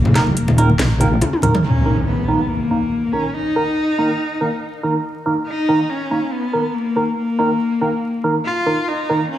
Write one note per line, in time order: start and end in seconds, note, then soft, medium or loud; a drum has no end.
0.00 0.35 F#1 loud
0.00 1.18 A#3 medium
0.05 muted conga medium
0.05 low conga loud
0.15 0.22 D#3 medium
0.15 0.22 A#3 medium
0.15 0.22 A#4 loud
0.15 snare medium
0.15 closed hi-hat medium
0.27 high conga medium
0.37 0.78 D#1 loud
0.37 closed hi-hat medium
0.48 muted conga medium
0.58 0.68 D#3 loud
0.58 0.68 A#3 medium
0.58 0.68 A#4 loud
0.58 closed hi-hat medium
0.70 high conga medium
0.79 1.22 A#1 loud
0.79 snare loud
0.79 closed hi-hat medium
0.79 muted conga medium
1.00 1.07 D#3 medium
1.00 1.07 A#3 medium
1.00 1.07 A#4 loud
1.00 closed hi-hat medium
1.00 high conga medium
1.21 closed hi-hat medium
1.21 high tom medium
1.21 muted conga medium
1.33 high tom medium
1.42 1.53 D#3 medium
1.42 1.53 A#3 medium
1.42 1.53 A#4 medium
1.42 closed hi-hat medium
1.42 high conga medium
1.42 low conga medium
1.55 mid tom medium
1.55 muted conga medium
1.64 2.04 C#4 loud
1.64 impact medium
1.85 1.92 D#3 medium
1.85 1.92 A#3 medium
1.85 1.92 A#4 medium
2.06 2.51 B3 medium
2.28 2.39 D#3 medium
2.28 2.39 A#3 medium
2.28 2.39 A#4 loud
2.49 3.14 A#3 medium
2.71 2.77 D#3 medium
2.71 2.77 A#3 medium
2.71 2.77 A#4 medium
3.13 3.24 D#3 medium
3.13 3.24 A#3 medium
3.13 3.35 C#4 loud
3.13 3.24 A#4 medium
3.34 4.83 D#4 loud
3.56 3.62 D#3 medium
3.56 3.62 A#3 medium
3.56 3.62 A#4 medium
3.98 4.09 D#3 medium
3.98 4.09 A#3 medium
3.98 4.09 A#4 loud
4.41 4.47 D#3 medium
4.41 4.47 A#3 medium
4.41 4.47 A#4 medium
4.83 4.94 D#3 medium
4.83 4.94 A#3 medium
4.83 4.94 A#4 medium
5.26 5.32 D#3 medium
5.26 5.32 A#3 medium
5.26 5.32 A#4 loud
5.47 5.91 D#4 medium
5.68 5.79 D#3 medium
5.68 5.79 A#3 medium
5.68 5.79 A#4 loud
5.90 6.34 C#4 medium
6.11 6.17 D#3 medium
6.11 6.17 A#3 medium
6.11 6.18 A#4 medium
6.32 6.76 B3 medium
6.53 6.64 D#3 medium
6.53 6.64 A#3 medium
6.53 6.64 A#4 medium
6.75 7.17 A#3 medium
6.96 7.03 D#3 medium
6.96 7.03 A#3 medium
6.96 7.03 A#4 medium
7.18 8.20 A#3 medium
7.39 7.49 D#3 medium
7.39 7.49 A#3 medium
7.39 7.49 A#4 loud
7.81 7.88 D#3 medium
7.81 7.88 A#3 medium
7.81 7.88 A#4 medium
8.24 8.34 D#3 medium
8.24 8.34 A#3 medium
8.24 8.34 A#4 medium
8.45 8.90 F4 loud
8.66 8.73 D#3 medium
8.66 8.73 A#3 medium
8.66 8.73 A#4 loud
8.88 9.30 D#4 loud
9.09 9.20 D#3 medium
9.09 9.20 A#3 medium
9.09 9.20 A#4 medium
9.31 9.38 C#4 loud